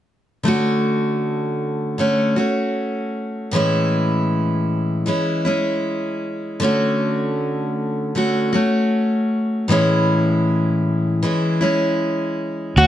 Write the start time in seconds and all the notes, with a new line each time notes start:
0.43 D3 A3 C#4
0.48 F#4
1.98 D3 A3 C#4 F#4
2.36 A3 C#4 F#4
3.51 A2 E3 G#3 C#4
3.56 E4
5.06 E3 G#3 C#4 E4
5.45 G#3 C#4 E4
6.60 D3 A3 C#4
6.64 F#4
8.15 D3 A3 C#4 F#4
8.53 A3 C#4 F#4
9.68 A2 E3 G#3 C#4
9.72 E4
11.23 E3 G#3 C#4 E4
11.61 G#3 C#4 E4
12.76 D2 D3 A3 C#4 F#4